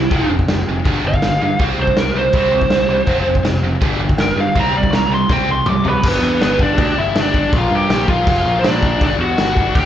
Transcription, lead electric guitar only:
Already playing: E4
1.08 F5
1.82 C5
2.00 A#4
2.18 C5
2.38 C5
4.21 A#4
4.40 F5
4.60 A#5
4.77 D5
4.95 A#5
5.14 C6
5.33 G5
5.51 C6
5.69 D6
5.88 B3 B4 B5
6.42 B3 B4
6.61 D4 D5
6.98 E4 E5
7.19 D4 D5
7.56 F4 F5
7.75 G4 G5
8.08 F4 F5
8.59 C5
8.68 D4 D5
9.04 D4 D5
9.21 F#4 F#5
9.75 G4
9.79 G5

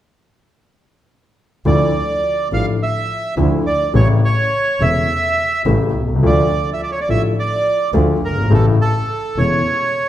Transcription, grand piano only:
1.66 D2 D3 F3 A3 E4
2.52 A1 A2 D3 F3 A3 E4
3.37 D2 D3 F3 A3 E4
3.94 A1 A2 C#3 E3 A3 E4
4.80 E1 E2 C#3 E3 A3 E4
5.66 A1 A2 C#3 E3 A3 E4
6.01 B1
6.08 C2
6.15 C#2
6.23 D2 D3 F3 A3 F4
7.09 A1 A2 D3 F3 A3 F4
7.94 D2 D3 F3 A3 F4
8.29 F#1
8.37 G1
8.43 G#1
8.50 A1 A2 C#3 E3 A3 E4
9.37 E1 E2 C#3 E3 A3 E4

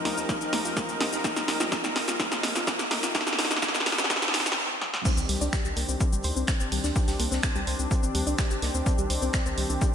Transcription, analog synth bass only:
0.05 D#2
0.17 D#2
0.41 A#1
0.53 D#2
0.65 D#2
0.89 D#2
1.00 D#2
1.13 D#2
1.36 D#2
1.48 D#2
1.60 D#2
1.84 D#2
1.96 D#2
2.08 D#2
2.32 A#1
2.43 D#2
2.56 D#2
2.79 D#2
2.91 D#2
3.03 D#2
3.27 D#2
3.39 D#2
3.51 D#2
3.75 D#2
3.86 D#2
3.98 D#2
4.22 D#1
4.34 D#2
4.46 D#2
5.17 C2
5.29 C2
5.41 C2
5.65 C2
5.77 C2
5.89 C2
6.13 G1
6.24 D2
6.37 C2
6.60 G1
6.72 C2
6.84 D2
7.08 C2
7.20 C2
7.32 C2
7.56 C2
7.67 C2
7.79 C2
8.03 G1
8.15 D2
8.27 C2
8.51 G1
8.62 C2
8.75 D2
8.98 C2
9.10 C2
9.22 C2
9.46 C2
9.58 C2
9.70 C2

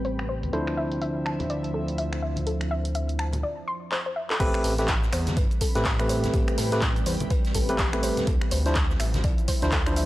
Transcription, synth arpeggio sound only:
0.05 C5
0.29 C5
0.53 A4
0.77 E5
1.02 E5
1.26 A5
1.50 D5
1.74 A4
1.98 E5
2.22 E5
2.47 A4
2.71 E5
2.95 E5
3.19 A5
3.43 D5
3.68 C6
3.92 C5
4.06 C5
4.16 E5
4.30 A4
4.40 G4
4.64 A4
4.88 G5
5.13 C5
5.37 B4
5.61 A4
5.85 G4
6.10 C5
6.34 G4
6.58 A4
6.82 G5
7.06 C5
7.31 B4
7.55 A4
7.79 G4
8.03 C5
8.27 A4
8.52 C5
8.76 A5
9.00 E5
9.24 D5
9.48 C5
9.73 A4
9.97 E5

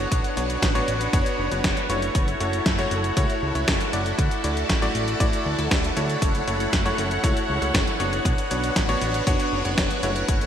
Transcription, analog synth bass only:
0.12 B1
0.37 B1
0.62 A1
0.88 A1
1.13 F#1
1.39 F#1
1.51 F#1
1.64 F#1
1.89 F#1
2.15 F#1
2.40 F#1
2.66 F#1
2.91 F#1
3.17 C#2
3.42 C#2
3.55 C#2
3.68 F#1
3.93 F#1
4.19 D2
4.44 D2
4.69 A1
4.95 A1
5.20 A1
5.46 D2
5.59 D2
5.71 D2
5.97 D2
6.22 F#1
6.48 F#1
6.73 F#1
6.98 F#1
7.24 C#2
7.49 C#2
7.62 C#2
7.75 F#1
8.00 F#1
8.25 B1
8.51 B1
8.76 A1
9.02 A1
9.27 F#1
9.52 F#1
9.65 F#1
9.78 F#1
10.03 F#1
10.29 F#1

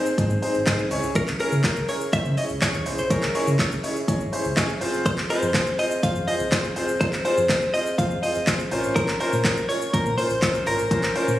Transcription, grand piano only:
0.18 C4 D#4 G#4 C5
0.42 C4 D#4 G#4 C5
0.66 C4 D#4 G#4 C5
0.91 C#4 E4 G#4 C#5
1.39 C#4 E4 G#4 A#4
1.64 C#4 E4 G#4 C#5
1.88 C#4 E4 G#4 A#4
2.12 C#4 E4 G#4 C5
2.37 C#4 E4 G#4 C#5
2.61 C#4 E4 G#4 C#5
2.86 C#4 E4 G#4 C5
3.10 C#4 E4 G#4 C#5
3.35 C#4 E4 G#4 C#5
3.59 C#4 E4 G#4 C#5
3.83 C#4 E4 G#4 C#5
4.08 C#4 E4 G#4 C#5
4.32 C#4 E4 G#4 C5
4.56 C#4 E4 G#4 C#5
4.81 C4 F4 G#4 C5
5.29 C4 F4 G#4 D#5
5.54 C4 F4 G#4 C5
5.78 C4 F4 G#4 C5
6.03 C4 F4 G#4 C5
6.27 C4 F4 G#4 C5
6.52 C4 F4 G#4 C5
6.76 C4 F4 G#4 C5
7.00 C4 F4 G#4 C5
7.25 C4 F4 G#4 C5
7.49 C4 F4 G#4 C5
7.74 C4 F4 G#4 C5
7.98 C4 F4 G#4 C5
8.22 C4 F4 G#4 C5
8.47 C4 F4 G#4 C5
8.71 C#4 F4 A#4 C5
9.20 C#4 F4 A#4 C5
9.44 C#4 F4 A#4 C5
9.69 C#4 F4 A#4 C#5
9.93 C#4 F4 A#4 C5
10.17 C#4 F4 A#4 C5
10.42 C#4 F4 A#4 C5
10.66 C#4 F4 A#4 C5
10.91 C#4 F4 A#4 C5
11.15 C#4 F4 A#4 C5

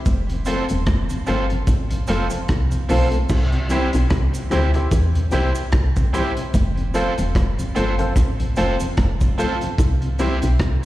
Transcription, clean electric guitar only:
0.46 C4 F4 A4 C5
1.27 C4 F4 A4 C5
2.08 C4 F4 A4 C5
2.30 muted clean electric guitar stroke
2.89 C4 F4 A4 C5
3.70 C4 E4 G4 C5
4.51 C4 E4 G4 C5
4.74 muted clean electric guitar stroke
5.33 C4 E4 G4 C5
6.13 C4 E4 G4 C5
6.94 C4 F4 A4 C5
7.75 C4 F4 A4 C5
7.99 muted clean electric guitar stroke
8.57 C4 F4 A4 C5
9.38 C4 F4 A4 C5
10.19 C4 E4 G4 C5

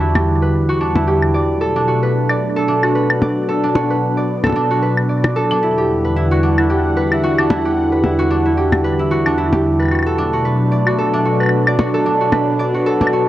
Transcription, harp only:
Already playing: D4 F#4 B4
0.00 E4
0.15 G4
0.42 B4
0.69 F#4
0.81 D4
0.96 E4
1.07 G4
1.34 D5
1.61 A4
1.76 D4
1.88 F#4
2.03 B4
2.30 D5
2.56 A4
2.68 D4
2.83 F#4
2.95 B4
3.22 D5
3.48 A4
3.63 D4
3.75 F#4
3.90 B4
4.17 D5
4.44 A4
4.56 D4
4.71 F#4
4.82 B4
5.09 D5
5.36 A4
5.51 D4
5.63 E4
5.78 G4
6.05 B4
6.16 E4
6.31 F#4
6.43 D4
6.58 E4
6.70 G4
6.97 B4
7.12 E4
7.23 F#4
7.38 D4
7.50 E4
7.65 G4
7.92 B4
8.04 E4
8.19 F#4
8.31 D4
8.46 E4
8.57 G4
8.84 B4
8.99 E4
9.11 F#4
9.26 D4
9.38 E4
9.53 G4
9.80 B4
9.91 F#4
10.06 A4
10.18 D4
10.33 F#4
10.45 B4
10.72 D5
10.87 F#4
10.98 A4
11.13 D4
11.25 F#4
11.40 B4
11.67 D5
11.79 F#4
11.94 A4
12.06 D4
12.21 F#4
12.32 B4
12.59 D5
12.74 F#4
12.86 A4
13.01 D4
13.13 F#4

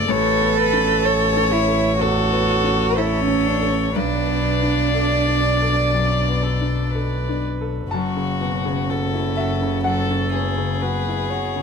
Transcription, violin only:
Already playing: D5
0.10 C#5
0.60 B4
1.06 C#5
2.01 A4
2.98 C#5
3.96 D5
7.93 F#4
8.90 A4
9.84 A4
10.35 G#4

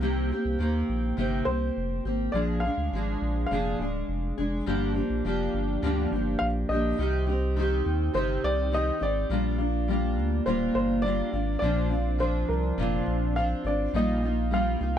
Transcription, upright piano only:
1.45 C5
2.32 D5
2.60 F5
3.47 F5
6.39 F5
6.69 D#5
8.15 C5
8.44 D5
8.74 D#5
9.03 D5
10.46 C5
10.75 C5
11.02 D5
11.59 D5
12.20 C5
12.49 A#4
13.36 F5
13.67 D5
13.96 D#5
14.54 F5

